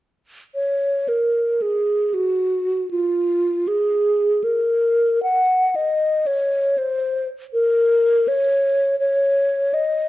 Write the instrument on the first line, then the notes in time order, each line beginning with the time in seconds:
alto flute
0.55 C#5
1.08 A#4
1.62 G#4
2.14 F#4
2.91 F4
3.68 G#4
4.44 A#4
5.23 F#5
5.76 D#5
6.26 C#5
6.78 C5
7.53 A#4
8.28 C#5
8.99 C#5
9.74 D#5